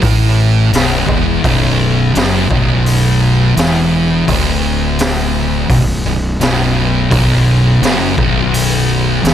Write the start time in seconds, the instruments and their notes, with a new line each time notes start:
0.01 fingered electric bass A1, distorted electric guitar A2, kick, open hi-hat
0.72 fingered electric bass B0, distorted electric guitar B1, snare, open hi-hat
1.08 fingered electric bass E1, distorted electric guitar E2, kick
1.43 fingered electric bass B0, distorted electric guitar B1, kick, open hi-hat
2.13 fingered electric bass F#1, distorted electric guitar F#2, open hi-hat
2.17 snare
2.49 fingered electric bass B0, distorted electric guitar B1, kick
2.86 open hi-hat
3.56 fingered electric bass E1, distorted electric guitar E2, snare, open hi-hat
4.28 fingered electric bass D1, distorted electric guitar D2, kick, open hi-hat
4.99 snare, open hi-hat
5.69 fingered electric bass B0, distorted electric guitar B1, kick, open hi-hat
6.05 fingered electric bass B0, distorted electric guitar B1
6.40 fingered electric bass B0, distorted electric guitar B1, snare, open hi-hat
7.11 fingered electric bass B0, distorted electric guitar B1, kick, open hi-hat
7.82 fingered electric bass F#1, distorted electric guitar F#2, snare, open hi-hat
8.17 fingered electric bass B0, distorted electric guitar B1, kick
8.54 open hi-hat
9.24 fingered electric bass E1, distorted electric guitar E2, snare, open hi-hat